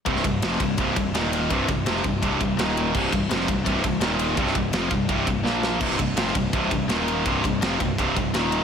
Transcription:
<<
  \new Staff \with { instrumentName = "Distorted electric guitar" } { \clef bass \time 4/4 \key c \minor \tempo 4 = 167 <c, g, c>8 <c, g,>8 <f, c f>8 <c, g,>8 <c, g, c>8 <c, g,>8 <ees, bes, ees>4 | <c, g, c>8 <c, g,>8 <f, c f>8 <c, g,>8 <c, g, c>8 <c, g,>8 <ees, bes, ees>4 | <c, g, c>8 <c, g,>8 <f, c f>8 <c, g,>8 <c, g, c>8 <c, g,>8 <ees, bes, ees>4 | <c, g, c>8 <c, g,>8 <f, c f>8 <c, g,>8 <c, g, c>8 <c, g,>8 <bes, f bes>4 |
<c, g, c>8 <c, g,>8 <f, c f>8 <c, g,>8 <c, g, c>8 <c, g,>8 <ees, bes, ees>4 | <c, g, c>8 <c, g,>8 <f, c f>8 <c, g,>8 <c, g, c>8 <c, g,>8 <ees, bes, ees>4 | }
  \new Staff \with { instrumentName = "Distorted electric guitar" } { \clef bass \time 4/4 \key c \minor <c, g, c>8 <c, g,>8 <f, c f>8 <c, g,>8 <c, g, c>8 <c, g,>8 <ees, bes, ees>4 | <c, g, c>8 <c, g,>8 <f, c f>8 <c, g,>8 <c, g, c>8 <c, g,>8 <ees, bes, ees>4 | <c, g, c>8 <c, g,>8 <f, c f>8 <c, g,>8 <c, g, c>8 <c, g,>8 <ees, bes, ees>4 | <c, g, c>8 <c, g,>8 <f, c f>8 <c, g,>8 <c, g, c>8 <c, g,>8 <bes, f bes>4 |
<c, g, c>8 <c, g,>8 <f, c f>8 <c, g,>8 <c, g, c>8 <c, g,>8 <ees, bes, ees>4 | <c, g, c>8 <c, g,>8 <f, c f>8 <c, g,>8 <c, g, c>8 <c, g,>8 <ees, bes, ees>4 | }
  \new Staff \with { instrumentName = "Picked electric bass" } { \clef bass \time 4/4 \key c \minor c,,8 c,,8 f,,8 c,,8 c,,8 c,,8 ees,,4 | c,,8 c,,8 f,,8 c,,8 c,,8 c,,8 ees,,4 | c,,8 c,,8 f,,8 c,,8 c,,8 c,,8 ees,,4 | c,,8 c,,8 f,,8 c,,8 c,,8 c,,8 bes,,4 |
c,,8 c,,8 f,,8 c,,8 c,,8 c,,8 ees,,4 | c,,8 c,,8 f,,8 c,,8 c,,8 c,,8 ees,,4 | }
  \new DrumStaff \with { instrumentName = "Drums" } \drummode { \time 4/4 <bd cymr>16 sn16 <bd cymr>8 <cymr sn>16 sn16 <bd cymr>8 <bd cymr>8 <bd cymr>8 <cymr sn>8 cymr8 | <bd cymr>8 <bd cymr>8 <cymr sn>16 sn16 <bd cymr>8 <bd cymr>8 <bd cymr>8 <cymr sn>8 cymr8 | <cymc bd>8 <bd cymr>8 <cymr sn>16 sn16 <bd cymr>8 <bd cymr>8 <bd cymr>8 <cymr sn>8 cymr8 | <bd cymr>16 sn16 <bd cymr>8 <cymr sn>8 <bd cymr>8 <bd cymr>8 <bd cymr>8 sn8 sn8 |
<cymc bd>16 sn16 <bd cymr>8 <cymr sn>16 sn16 <bd cymr>8 <bd cymr>8 <bd cymr>8 <cymr sn>8 cymr8 | <bd cymr>8 <bd cymr>8 <cymr sn>8 <bd cymr>8 <bd cymr>8 <bd cymr>8 <cymr sn>8 cymr8 | }
>>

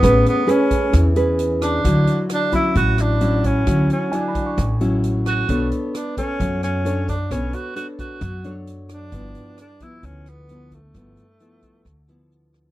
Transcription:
<<
  \new Staff \with { instrumentName = "Grand piano" } { \time 4/4 \key b \dorian \tempo 4 = 132 r1 | r4. b''2 r8 | r4 gis''16 b''16 cis'''2 r8 | r1 |
r1 | r1 | r1 | }
  \new Staff \with { instrumentName = "Tenor saxophone" } { \time 4/4 \key b \dorian b8 b8 cis'4. r4 d'8~ | d'4 d'8 e'8 fis'8 d'4 cis'8~ | cis'8 cis'8 d'4. r4 fis'8~ | fis'8 r8 d'8 cis'4 cis'4 d'8 |
cis'8 fis'8 fis'8 fis'4. r8 d'8~ | d'4 d'8 e'8 cis'8 b4 a8~ | a2. r4 | }
  \new Staff \with { instrumentName = "Nylon-string guitar" } { \time 4/4 \key b \dorian << { <cis' gis' b'>4 <cis' gis' b'>4. <cis' gis' b'>4. | <fis e'>4. <fis cis' e'>4. <fis cis' e'>4 | <fis cis' e'>4 <fis e'>4 r8 <fis cis' e'>4. | <d' a' cis''>4 r8 <a' cis''>4. <d' a' cis''>8 r8 |
<d' a' cis''>4 <d' a' cis''>4 r8 <d' a' cis''>4. | <f b e'>4 r8 <f b e'>4. <f b e'>8 r8 | <f b e'>8 r8 <f b e'>4 r8 <f b e'>4. | } \\ { a2 e2 | d2 a,2 | d2 a,2 | b2 fis2 |
b2 fis2 | g,2 d2 | g,2 d2 | } >> }
  \new Staff \with { instrumentName = "Upright bass" } { \clef bass \time 4/4 \key b \dorian a,,8 r4. e,2 | d,8 r4. a,,2 | d,8 r4. a,,2 | b,,8 r4. fis,2 |
b,,8 r4. fis,2 | g,,8 r4. d,2 | g,,8 r4. d,2 | }
  \new DrumStaff \with { instrumentName = "Drums" } \drummode { \time 4/4 <hh bd ss>8 hh8 hh8 <hh bd>8 <hh bd ss>8 hh8 hh8 <hh ss>8 | <hh bd>8 hh8 <hh ss>8 <hh bd>8 <hh bd>8 <hh ss>8 hh8 <hh bd>8 | <hh bd ss>8 hh8 hh8 <hh bd>8 <hh bd ss>8 hh8 hh8 <hh ss>8 | <hh bd>8 hh8 <hh ss>8 <hh bd>8 <hh bd>8 <hh ss>8 hh8 <hh bd>8 |
<hh bd ss>8 hh8 hh8 <hh bd>8 <hh bd ss>8 hh8 hh8 <hh ss>8 | <hh bd>8 hh8 <hh ss>8 <hh bd>8 <hh bd>8 <hh ss>8 hh8 <hh bd>8 | <hh bd ss>8 hh8 hh8 <hh bd>8 <hh bd ss>8 hh8 hh8 <hh ss>8 | }
>>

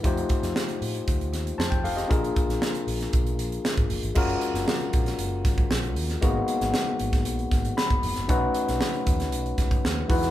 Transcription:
<<
  \new Staff \with { instrumentName = "Tine electric piano" } { \time 4/4 \key fis \major \tempo 4 = 116 << { r2. <c'' a''>16 g''16 <a' f''>16 <g' ees''>16~ | <g' ees''>16 r2. r8. | r1 | r2. b''4 |
r1 | } \\ { <a ees' f' g' c''>1 | <ais d' eis' gis' ais'>1 | <gis cis' eis' fis' ais'>1 | <gis ais b dis' fis'>1 |
<a cis' dis' fis' b'>2.~ <a cis' dis' fis' b'>8 <gis dis' e' fis' b'>8 | } >> }
  \new Staff \with { instrumentName = "Fretless electric bass" } { \clef bass \time 4/4 \key fis \major f,8 r16 f,16 r8 a,8 d,8 ees,8 f,8 f,,8 | ais,,8 r16 ais,,16 r8 ais,,8 b,,8 ais,,8 r16 gis,,16 fis,,16 gis,,16 | fis,,8 r16 fis,,16 r8 ais,,8 fis,,8 gis,,8 ais,,8 dis,8 | gis,,8 r16 gis,,16 r8 gis,,8 ais,,8 gis,,8 r16 fis,,16 eis,,16 fis,,16 |
b,,8 r16 b,,16 r8 dis,8 b,,8 cis,8 dis,8 e,8 | }
  \new DrumStaff \with { instrumentName = "Drums" } \drummode { \time 4/4 <hh bd>16 hh16 <hh bd>16 <hh sn>16 sn16 hh16 hho16 hh16 <hh bd>16 hh16 <hh sn>16 hh16 sn16 <hh bd>16 hho16 <hh sn>16 | <hh bd>16 hh16 <hh bd>16 <hh sn>16 sn16 hh16 hho16 <hh sn>16 <hh bd>16 hh16 hh16 hh16 sn16 <hh bd>16 hho16 hh16 | <cymc bd>16 hh16 hh16 <hh sn>16 sn16 hh16 <hh bd>16 <hh sn>16 hh8 <hh bd sn>16 <hh bd>16 sn16 hh16 hho16 <hh sn>16 | <hh bd>8 hh16 <hh sn>16 sn8 hh16 <hh bd sn>16 hh16 hh16 <hh bd sn>16 hh16 sn16 <hh bd>16 hho16 <hh sn>16 |
<hh bd>8 hh16 <hh sn>16 sn16 hh16 <hh bd>16 <hh sn>16 hh16 hh16 <hh bd sn>16 <hh bd>16 sn8 <hho bd>16 <hh sn>16 | }
>>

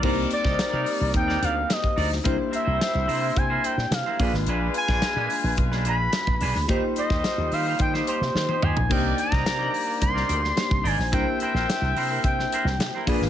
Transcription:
<<
  \new Staff \with { instrumentName = "Analog synth lead" } { \time 4/4 \key c \minor \tempo 4 = 108 r8 d''4. g''8 f''8 ees''8. r16 | r8 e''4. aes''8 g''8 f''8. r16 | r8 aes''4. r8 ces'''4. | r8 ees''4 f''8 g''8 c''4 aes''8 |
g''8 bes''4. c'''4. aes''8 | g''8 g''4. g''4. r8 | }
  \new Staff \with { instrumentName = "Clean electric guitar" } { \time 4/4 \key c \minor <ees' bes' d''>8 r16 <ees' bes' ees''>16 r16 <ees' bes' d''>16 r8. <ees' bes' d''>16 <ees' bes' d''>16 r8. <ees' bes' d''>16 r16 | <e' bes' c''>16 r16 <e' bes' c''>16 <e' bes' c''>16 r8 <e' bes' c''>16 <e' bes' c''>16 r16 <e' bes' c''>16 <e' bes' c''>16 r8 <e' bes' c''>16 <d' aes' ces''>16 r16 | <d' aes' ces''>8 r16 <d' aes' d''>16 r16 <d' aes' ces''>16 r8. <d' aes' ces''>16 <d' aes' ces''>16 r8. <d' aes' ces''>16 r16 | <ees' g' c''>16 r16 <ees' g' c''>16 <ees' g' c''>16 r8 <ees' g' c''>16 <ees' g' c''>16 r16 <ees' g' c''>16 <ees' g' c''>16 r8 <ees' g' c''>16 <ees' g' c''>16 r16 |
<ees' bes' d''>8 r16 <ees' bes' ees''>16 r16 <ees' bes' d''>16 r8. <ees' bes' d''>16 <ees' bes' d''>16 r8. <ees' bes' d''>16 r16 | <e' bes' c''>16 r16 <e' bes' c''>16 <e' bes' c''>16 r8 <e' bes' c''>16 <e' bes' c''>16 r8 <e' bes' c''>16 r8 <e' bes' c''>16 <d' aes' ces''>16 r16 | }
  \new Staff \with { instrumentName = "Horn section" } { \time 4/4 \key c \minor <g ees' bes'>2.~ <g ees' bes'>8 r8 | <g e' c''>2. r8 <aes f' ces''>8~ | <aes f' ces''>2.~ <aes f' ces''>8 r8 | <g ees' c''>2.~ <g ees' c''>8 r8 |
<bes g' d''>2.~ <bes g' d''>8 r8 | <c' bes' e''>2. r8 <d' ces'' f''>8 | }
  \new Staff \with { instrumentName = "FM electric piano" } { \time 4/4 \key c \minor <bes c' ees' g' c''>1 | <bes d' e' g' c''>2.~ <bes d' e' g' c''>8 <bes d' f' aes' ces''>8~ | <bes d' f' aes' ces''>2.~ <bes d' f' aes' ces''>8 r8 | <bes ees' f' g' c''>1 |
<bes d' ees' g' c''>2. <bes d' ees' g' c''>4 | <bes d' e' g' c''>2.~ <bes d' e' g' c''>8 <bes d' f' aes' ces''>8 | }
  \new Staff \with { instrumentName = "Slap bass" } { \clef bass \time 4/4 \key c \minor c,8 r16 c,16 r16 c16 r16 c,16 ees,8 d,8 r8 d,8 | c,16 r8 c,16 r16 c,16 c8 c8 r16 bes,16 c16 r16 bes,,16 aes,,16 | bes,,8 r16 bes,,16 r16 bes,16 r16 bes,,16 ces,8 bes,,8 r16 bes,,16 ces,16 d,16 | ees,16 r8 ees,16 r16 ees,16 ees8 ees8 r16 c16 ees16 r16 ees,16 bes,,16 |
c,8 r16 c,16 c8 r8 c,8 d,8 r16 c,16 aes,,16 bes,,16 | c,16 r8 bes,,16 r16 c,16 c8 c8 r16 c,16 c16 r16 bes,,16 aes,,16 | }
  \new DrumStaff \with { instrumentName = "Drums" } \drummode { \time 4/4 <cymc bd>8 hh16 <bd sn>16 <hh sn>8 hho8 <hh bd>16 sn16 hh8 <hh sn>16 bd16 hho16 sn16 | <hh bd>8 hh8 <hh sn>8 hho8 <hh bd>8 hh16 sn16 <hh sn>8 <hho bd>16 sn16 | hh8 hh16 <bd sn>16 <hh sn>8 hho8 <hh bd>16 sn16 hh8 <hh sn>16 bd16 hho16 sn16 | <hh bd>8 hh16 <bd sn>16 <hh sn>8 hho8 <hh bd>16 sn16 hh16 sn16 sn16 tommh16 toml16 tomfh16 |
<cymc bd>8 hh16 <bd sn>16 <hh sn>8 hho8 <hh bd>16 sn16 hh16 sn16 <hh sn>16 bd16 hho16 sn16 | <hh bd>8 hh16 sn16 <hh sn>8 hho8 <hh bd>16 sn16 hh16 sn16 <hh sn>8 <hho bd>16 sn16 | }
>>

